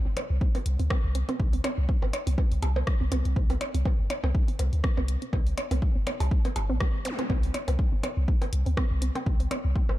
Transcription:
0.06 sub bass G1, synth pluck C4
0.17 synth pluck C4, closed hi-hat, percussion blips
0.30 sub bass C2
0.41 synth pluck C4, kick
0.55 synth pluck C4, closed hi-hat, percussion blips
0.66 sub bass C2, closed hi-hat
0.79 sub bass D2, synth pluck C4, closed hi-hat
0.90 synth pluck C4, kick, cross-stick, percussion blips
1.04 sub bass C2
1.15 synth pluck C4, closed hi-hat
1.29 synth pluck C4, closed hi-hat, percussion blips
1.40 sub bass C2, kick
1.53 synth pluck C4, closed hi-hat
1.64 synth pluck C4, closed hi-hat, percussion blips
1.78 sub bass C2
1.89 synth pluck C4, kick
2.02 sub bass G1, synth pluck C4, percussion blips
2.13 closed hi-hat, percussion blips
2.27 sub bass C2, synth pluck C4, closed hi-hat
2.38 synth pluck C4, kick, percussion blips
2.52 sub bass C2, closed hi-hat
2.62 sub bass C2, synth pluck C4, closed hi-hat, percussion blips
2.76 synth pluck C4, percussion blips
2.87 kick, cross-stick
3.01 sub bass C2, synth pluck C4
3.12 sub bass C2, synth pluck C4, closed hi-hat, percussion blips
3.25 sub bass C2, closed hi-hat
3.36 sub bass C2, synth pluck C4, kick
3.50 synth pluck C4, closed hi-hat, percussion blips
3.61 closed hi-hat, percussion blips
3.74 sub bass C2, synth pluck C4, closed hi-hat
3.85 synth pluck C4, kick, percussion blips
3.99 sub bass G1
4.10 synth pluck C4, closed hi-hat, percussion blips
4.24 sub bass C2, synth pluck C4, percussion blips
4.35 kick
4.48 synth pluck C4, closed hi-hat
4.59 sub bass C2, synth pluck C4, closed hi-hat, percussion blips
4.73 sub bass D2, closed hi-hat
4.84 synth pluck C4, kick, cross-stick
4.97 sub bass C2, synth pluck C4, percussion blips
5.08 closed hi-hat
5.22 synth pluck C4, closed hi-hat
5.33 sub bass C2, synth pluck C4, kick, percussion blips
5.47 closed hi-hat
5.58 synth pluck C4, closed hi-hat, percussion blips
5.71 sub bass C2, synth pluck C4, closed hi-hat, percussion blips
5.82 kick
5.96 sub bass G1, synth pluck C4
6.07 synth pluck C4, closed hi-hat, percussion blips
6.20 sub bass C2, closed hi-hat, percussion blips
6.31 synth pluck C4, kick
6.45 synth pluck C4, closed hi-hat, percussion blips
6.56 sub bass G1, closed hi-hat, percussion blips
6.69 sub bass A#1, synth pluck C4
6.80 synth pluck G3, kick, cross-stick, percussion blips
7.05 synth pluck C4, closed hi-hat, zap
7.19 synth pluck C4, closed hi-hat, percussion blips
7.30 sub bass C2, synth pluck C4, kick, percussion blips
7.43 closed hi-hat
7.54 synth pluck C4, closed hi-hat, percussion blips
7.68 sub bass C2, synth pluck C4, closed hi-hat, percussion blips
7.79 kick
7.92 sub bass G1, synth pluck C4
8.03 synth pluck C4, closed hi-hat, percussion blips
8.17 sub bass C2
8.28 synth pluck C4, kick
8.42 synth pluck C4, closed hi-hat, percussion blips
8.53 sub bass C2, closed hi-hat
8.66 sub bass D2, synth pluck C4, closed hi-hat
8.77 synth pluck C4, kick, cross-stick, percussion blips
8.91 sub bass C2
9.02 synth pluck C4, closed hi-hat
9.15 synth pluck C4, closed hi-hat, percussion blips
9.26 sub bass C2, kick
9.40 synth pluck C4, closed hi-hat
9.51 synth pluck C4, closed hi-hat, percussion blips
9.65 sub bass C2
9.76 synth pluck C4, kick
9.89 sub bass G1, synth pluck C4, percussion blips

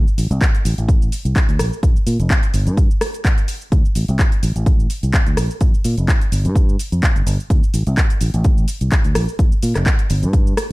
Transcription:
0.08 shaker
0.18 fingered electric bass A1, open hi-hat, shaker
0.31 fingered electric bass C2, closed hi-hat, shaker
0.41 kick, clap, shaker
0.55 closed hi-hat, shaker
0.65 fingered electric bass A1, open hi-hat, shaker
0.78 fingered electric bass A1, closed hi-hat, shaker
0.89 kick, closed hi-hat, shaker
1.02 shaker
1.12 open hi-hat, shaker
1.25 fingered electric bass C2, closed hi-hat, shaker
1.36 kick, clap, closed hi-hat, shaker
1.49 fingered electric bass D2, closed hi-hat, shaker
1.59 fingered electric bass A#1, cross-stick, open hi-hat, shaker
1.73 shaker
1.83 fingered electric bass A#1, kick, closed hi-hat, shaker
1.96 muted fingered electric bass stroke, shaker
2.07 fingered electric bass A#2, open hi-hat, shaker
2.20 fingered electric bass F1, closed hi-hat, shaker
2.30 kick, clap, shaker
2.43 closed hi-hat, shaker
2.54 fingered electric bass G1, open hi-hat, shaker
2.67 fingered electric bass G2, closed hi-hat, shaker
2.77 kick, closed hi-hat, shaker
2.91 shaker
3.01 cross-stick, open hi-hat, shaker
3.14 closed hi-hat, shaker
3.25 kick, clap, closed hi-hat, shaker
3.38 closed hi-hat, shaker
3.48 open hi-hat, shaker
3.61 shaker
3.72 fingered electric bass D2, kick, closed hi-hat, shaker
3.85 shaker
3.95 fingered electric bass A1, open hi-hat, shaker
4.08 fingered electric bass C2, closed hi-hat, shaker
4.19 kick, clap, shaker
4.32 closed hi-hat, shaker
4.43 fingered electric bass A1, open hi-hat, shaker
4.56 fingered electric bass A1, closed hi-hat, shaker
4.66 kick, closed hi-hat, shaker
4.80 shaker
4.90 open hi-hat, shaker
5.03 fingered electric bass C2, closed hi-hat, shaker
5.14 kick, clap, closed hi-hat, shaker
5.26 fingered electric bass D2, closed hi-hat, shaker
5.37 fingered electric bass A#1, cross-stick, open hi-hat, shaker
5.50 shaker
5.61 fingered electric bass A#1, kick, closed hi-hat, shaker
5.74 muted fingered electric bass stroke, shaker
5.84 fingered electric bass A#2, open hi-hat, shaker
5.98 fingered electric bass F1, closed hi-hat, shaker
6.08 kick, clap, shaker
6.21 closed hi-hat, shaker
6.32 fingered electric bass G1, open hi-hat, shaker
6.45 fingered electric bass G2, closed hi-hat, shaker
6.55 kick, closed hi-hat, shaker
6.69 shaker
6.79 open hi-hat, shaker
6.92 fingered electric bass F2, closed hi-hat, shaker
7.03 kick, clap, closed hi-hat, shaker
7.16 fingered electric bass G1, closed hi-hat, shaker
7.26 fingered electric bass G1, open hi-hat, shaker
7.40 shaker
7.50 fingered electric bass D2, kick, closed hi-hat, shaker
7.64 shaker
7.74 fingered electric bass A1, open hi-hat, shaker
7.87 fingered electric bass C2, closed hi-hat, shaker
7.97 kick, clap, shaker
8.10 closed hi-hat, shaker
8.21 fingered electric bass A1, open hi-hat, shaker
8.34 fingered electric bass A1, closed hi-hat, shaker
8.44 kick, closed hi-hat, shaker
8.58 shaker
8.68 open hi-hat, shaker
8.81 fingered electric bass C2, closed hi-hat, shaker
8.92 kick, clap, closed hi-hat, shaker
9.04 fingered electric bass D2, closed hi-hat, shaker
9.15 fingered electric bass A#1, cross-stick, open hi-hat, shaker
9.29 shaker
9.39 fingered electric bass A#1, kick, closed hi-hat, shaker
9.52 muted fingered electric bass stroke, shaker
9.62 fingered electric bass A#2, open hi-hat, shaker
9.75 fingered electric bass F1, cross-stick, clap, closed hi-hat, shaker
9.86 kick, clap, shaker
9.99 closed hi-hat, shaker
10.10 fingered electric bass G1, open hi-hat, shaker
10.23 fingered electric bass G2, closed hi-hat, shaker
10.33 kick, closed hi-hat, shaker
10.47 shaker
10.57 cross-stick, open hi-hat, shaker

